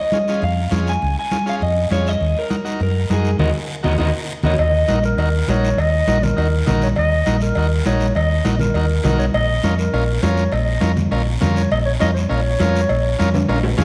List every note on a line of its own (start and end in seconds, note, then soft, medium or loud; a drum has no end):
0.00 0.44 D#5 medium
0.12 0.18 C#4 medium
0.12 0.18 F4 medium
0.12 0.18 G#4 medium
0.12 high conga medium
0.12 short guiro medium
0.28 0.44 C#4 medium
0.28 0.44 F4 medium
0.28 0.44 G#4 medium
0.28 short guiro medium
0.42 0.66 F2 medium
0.42 0.71 F5 medium
0.42 high conga soft
0.42 long guiro medium
0.71 0.96 F2 medium
0.71 0.92 C#4 medium
0.71 0.93 F4 medium
0.71 0.93 G#4 medium
0.71 high conga medium
0.71 short guiro medium
0.87 1.16 G#5 medium
0.87 short guiro medium
1.02 1.14 C#2 medium
1.02 high conga soft
1.02 long guiro medium
1.19 1.46 G#5 medium
1.31 1.37 C#4 medium
1.31 1.37 F4 medium
1.31 1.38 G#4 medium
1.31 high conga medium
1.31 short guiro medium
1.46 1.62 C#4 medium
1.46 1.62 F4 medium
1.46 1.62 G#4 medium
1.46 1.54 F5 medium
1.46 short guiro medium
1.61 1.86 F2 loud
1.61 1.92 D#5 medium
1.61 high conga soft
1.61 long guiro medium
1.91 2.15 F2 medium
1.91 2.12 C#4 medium
1.91 2.12 F4 medium
1.91 2.12 G#4 medium
1.91 2.08 C#5 medium
1.91 high conga medium
1.91 short guiro medium
2.07 2.38 D#5 medium
2.07 short guiro medium
2.21 2.33 D#2 medium
2.21 high conga soft
2.21 long guiro medium
2.39 2.82 A#4 medium
2.50 2.56 D#4 medium
2.50 2.56 F#4 medium
2.50 2.56 A#4 medium
2.50 high conga medium
2.50 short guiro medium
2.65 2.81 D#4 medium
2.65 2.81 F#4 medium
2.65 2.81 A#4 medium
2.65 short guiro medium
2.80 3.05 F#2 medium
2.80 3.12 A#4 medium
2.80 high conga soft
2.80 long guiro medium
3.10 3.34 F#2 medium
3.10 3.31 D#4 medium
3.10 3.31 F#4 medium
3.10 3.40 G#4 medium
3.10 3.31 A#4 medium
3.10 high conga medium
3.10 short guiro medium
3.25 short guiro medium
3.39 3.51 D#2 loud
3.39 3.50 D#4 medium
3.39 3.49 F#4 medium
3.39 3.50 A#4 medium
3.39 3.49 D#5 medium
3.39 low conga medium
3.39 long guiro medium
3.83 3.96 D#2 loud
3.83 3.93 D#4 medium
3.83 3.93 F#4 medium
3.83 3.95 F#4 medium
3.83 3.94 A#4 medium
3.83 3.95 A#4 medium
3.83 3.94 D#5 medium
3.83 low conga medium
3.83 long guiro medium
3.98 4.11 D#2 medium
3.98 4.08 D#4 medium
3.98 4.08 F#4 medium
3.98 4.09 F#4 medium
3.98 4.09 A#4 medium
3.98 4.10 A#4 medium
3.98 4.09 D#5 medium
3.98 low conga medium
3.98 long guiro loud
4.43 4.55 D#2 medium
4.43 4.54 D#4 medium
4.43 4.54 F#4 medium
4.43 4.54 A#4 medium
4.43 4.60 C#5 medium
4.43 4.55 D#5 medium
4.43 low conga medium
4.43 long guiro medium
4.58 4.83 D#2 medium
4.58 5.01 D#5 loud
4.58 cowbell medium
4.58 high conga soft
4.58 long guiro medium
4.88 5.13 A#1 medium
4.88 4.99 D#4 medium
4.88 4.99 F#4 medium
4.88 4.99 A#4 medium
4.88 cowbell medium
4.88 high conga medium
4.88 short guiro medium
5.03 5.51 A#4 loud
5.03 short guiro medium
5.17 5.42 D#2 loud
5.17 5.29 D#4 medium
5.17 5.29 F#4 medium
5.17 5.29 A#4 medium
5.17 cowbell medium
5.17 high conga soft
5.17 long guiro medium
5.48 5.72 A#1 loud
5.48 5.69 D#4 medium
5.48 5.69 F#4 medium
5.48 5.70 A#4 medium
5.48 5.82 C#5 loud
5.48 cowbell medium
5.48 high conga medium
5.48 low timbale medium
5.48 short guiro medium
5.64 short guiro medium
5.78 6.02 D#2 medium
5.78 6.25 D#5 loud
5.78 cowbell medium
5.78 high conga soft
5.78 long guiro medium
6.07 6.31 A#1 medium
6.07 6.18 D#4 medium
6.07 6.18 F#4 medium
6.07 6.18 A#4 medium
6.07 cowbell medium
6.07 high conga medium
6.07 short guiro medium
6.23 6.82 A#4 medium
6.23 low conga medium
6.23 short guiro medium
6.36 6.61 D#2 loud
6.36 6.47 D#4 medium
6.36 6.48 F#4 medium
6.36 6.48 A#4 medium
6.36 cowbell medium
6.36 high conga soft
6.36 long guiro medium
6.66 6.91 A#1 loud
6.66 6.88 D#4 medium
6.66 6.88 F#4 medium
6.66 6.88 A#4 medium
6.66 cowbell medium
6.66 high conga medium
6.66 low conga medium
6.66 short guiro medium
6.82 6.90 C#5 medium
6.82 short guiro medium
6.96 7.21 D#2 loud
6.96 7.39 D#5 loud
6.96 cowbell medium
6.96 high conga soft
6.96 long guiro medium
7.26 7.50 A#1 medium
7.26 7.37 D#4 medium
7.26 7.37 F#4 medium
7.26 7.37 A#4 medium
7.26 cowbell medium
7.26 high conga medium
7.26 short guiro medium
7.41 7.83 A#4 medium
7.41 short guiro medium
7.55 7.80 D#2 loud
7.55 7.67 D#4 medium
7.55 7.67 F#4 medium
7.55 7.68 A#4 medium
7.55 cowbell medium
7.55 high conga soft
7.55 long guiro medium
7.85 8.10 A#1 loud
7.85 8.07 D#4 medium
7.85 8.07 F#4 medium
7.85 8.07 A#4 medium
7.85 8.14 C#5 medium
7.85 cowbell medium
7.85 high conga medium
7.85 short guiro medium
8.00 short guiro medium
8.15 8.40 D#2 loud
8.15 8.57 D#5 loud
8.15 cowbell medium
8.15 high conga soft
8.15 long guiro medium
8.44 8.69 A#1 medium
8.44 8.55 D#4 medium
8.44 8.55 F#4 medium
8.44 8.56 A#4 medium
8.44 cowbell medium
8.44 high conga medium
8.44 short guiro medium
8.60 9.15 A#4 medium
8.60 low conga medium
8.60 short guiro medium
8.74 8.99 D#2 loud
8.74 8.86 D#4 medium
8.74 8.86 F#4 medium
8.74 8.86 A#4 medium
8.74 cowbell medium
8.74 high conga soft
8.74 long guiro medium
9.04 9.28 B1 loud
9.04 9.26 D#4 medium
9.04 9.26 F#4 medium
9.04 9.26 A#4 medium
9.04 cowbell medium
9.04 high conga medium
9.04 low conga medium
9.04 low timbale medium
9.04 short guiro medium
9.19 9.26 C#5 medium
9.19 short guiro medium
9.34 9.58 A#1 loud
9.34 9.76 D#5 loud
9.34 cowbell loud
9.34 high conga soft
9.34 long guiro medium
9.63 9.87 F2 medium
9.63 9.74 C#4 medium
9.63 9.74 F4 medium
9.63 9.75 A#4 medium
9.63 cowbell medium
9.63 high conga medium
9.63 short guiro medium
9.78 10.24 A#4 medium
9.78 short guiro medium
9.93 10.17 A#1 loud
9.93 10.04 C#4 medium
9.93 10.04 F4 medium
9.93 10.04 A#4 medium
9.93 cowbell medium
9.93 high conga soft
9.93 long guiro medium
10.23 10.47 F2 medium
10.23 10.44 C#4 medium
10.23 10.44 F4 medium
10.23 10.44 A#4 medium
10.23 10.54 C#5 medium
10.23 cowbell medium
10.23 high conga medium
10.23 low timbale medium
10.23 short guiro medium
10.37 short guiro medium
10.52 10.76 A#1 loud
10.52 10.97 D#5 medium
10.52 cowbell loud
10.52 high conga soft
10.52 long guiro medium
10.81 11.06 F2 medium
10.81 10.92 C#4 medium
10.81 10.92 F4 medium
10.81 10.92 A#4 medium
10.81 cowbell medium
10.81 high conga medium
10.81 short guiro medium
10.97 low conga medium
10.97 short guiro medium
11.11 11.36 A#1 loud
11.11 11.22 C#4 medium
11.11 11.22 F4 medium
11.11 11.22 A#4 medium
11.11 cowbell medium
11.11 high conga soft
11.11 long guiro medium
11.41 11.66 F2 loud
11.41 11.62 C#4 medium
11.41 11.62 F4 medium
11.41 11.62 A#4 medium
11.41 cowbell medium
11.41 high conga medium
11.41 low conga medium
11.41 short guiro medium
11.56 11.70 C#5 medium
11.56 short guiro medium
11.71 11.95 A#1 loud
11.71 11.78 D#5 loud
11.71 cowbell medium
11.71 high conga soft
11.71 long guiro medium
11.86 11.92 C#5 loud
12.00 12.25 F2 medium
12.00 12.11 C#4 medium
12.00 12.11 F4 medium
12.00 12.11 A#4 medium
12.00 12.08 D#5 loud
12.00 cowbell medium
12.00 high conga medium
12.00 short guiro medium
12.15 13.74 C#5 loud
12.15 short guiro medium
12.29 12.54 A#1 loud
12.29 12.40 C#4 medium
12.29 12.41 F4 medium
12.29 12.41 A#4 medium
12.29 cowbell medium
12.29 high conga soft
12.29 long guiro medium
12.60 12.84 F2 loud
12.60 12.81 C#4 medium
12.60 12.81 F4 medium
12.60 12.81 A#4 medium
12.60 cowbell medium
12.60 high conga medium
12.60 low timbale medium
12.60 short guiro medium
12.76 short guiro medium
12.89 13.14 A#1 loud
12.89 cowbell loud
12.89 high conga soft
12.89 long guiro medium
13.19 13.43 F2 medium
13.19 13.30 C#4 medium
13.19 13.30 F4 medium
13.19 13.30 A#4 loud
13.19 cowbell medium
13.19 high conga medium
13.19 short guiro medium
13.34 low conga medium
13.34 high timbale medium
13.34 short guiro medium
13.48 13.73 A#1 loud
13.48 13.59 C#4 medium
13.48 13.59 F4 medium
13.48 13.59 A#4 medium
13.48 cowbell medium
13.48 high conga soft
13.48 high timbale medium
13.48 long guiro medium
13.63 low timbale loud
13.77 13.84 F2 loud
13.77 13.84 C#4 medium
13.77 13.84 F4 medium
13.77 13.84 G#4 medium
13.77 cowbell medium
13.77 high conga medium
13.77 low conga medium
13.77 low timbale medium
13.77 short guiro medium